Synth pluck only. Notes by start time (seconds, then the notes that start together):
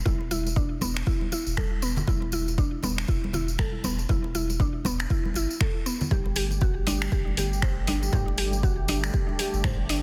0.06 E4
0.31 E4
0.56 D4
0.82 B3
1.07 E4
1.33 E4
1.57 A4
1.82 B3
2.08 E4
2.33 E4
2.58 D4
2.83 B3
3.09 E4
3.34 E4
3.59 A4
3.85 B3
4.10 E4
4.35 E4
4.60 D4
4.86 B3
5.11 E4
5.36 E4
5.61 A4
5.86 B3
6.11 G4
6.36 G4
6.62 F#4
6.87 D4
7.12 G4
7.38 G4
7.63 C5
7.88 D4
8.13 G4
8.38 G4
8.63 F#4
8.89 D4
9.14 G4
9.39 G4
9.64 C5
9.90 D4